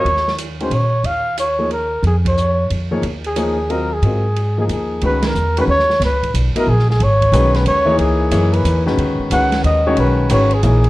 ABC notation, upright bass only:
X:1
M:3/4
L:1/8
Q:"Swing" 1/4=182
K:Db
V:1 name="Upright bass" clef=bass
E,,4 B,,2 | E,,6 | F,,4 F,,2 | E,,6 |
A,,4 E,,2 | [K:C#dor] C,,2 E,,2 D,,2 | C,,2 B,,, z A,,,2 | G,,,2 B,,,2 D,,2 |
C,,2 F,,2 E,,2 | D,, z C,,2 D,,2 | B,,,2 G,,,2 A,,,2 |]